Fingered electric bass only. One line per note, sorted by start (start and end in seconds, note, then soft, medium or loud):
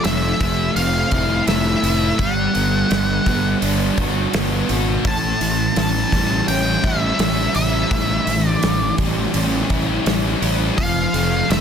0.05 0.32 F1 medium
0.41 0.68 F1 medium
0.76 1.03 F1 medium
1.12 1.39 F1 medium
1.47 1.74 F1 medium
1.83 2.10 F1 medium
2.19 2.46 G1 medium
2.55 2.82 G1 medium
2.91 3.18 G1 medium
3.27 3.54 G1 medium
3.62 3.89 G1 medium
3.98 4.25 G1 medium
4.34 4.61 G1 medium
4.69 4.96 G#1 medium
5.05 5.32 A1 medium
5.41 5.68 A1 medium
5.76 6.04 A1 medium
6.13 6.40 A1 medium
6.48 6.75 A1 medium
6.84 7.11 A1 medium
7.19 7.46 A1 medium
7.55 7.82 A1 medium
7.91 8.18 A1 medium
8.27 8.54 A1 medium
8.63 8.90 A1 medium
8.98 9.26 A1 medium
9.34 9.61 A1 medium
9.70 9.97 A1 medium
10.06 10.33 A1 medium
10.42 10.69 A1 medium
10.78 11.05 F1 medium
11.14 11.41 F1 medium
11.50 11.61 F1 medium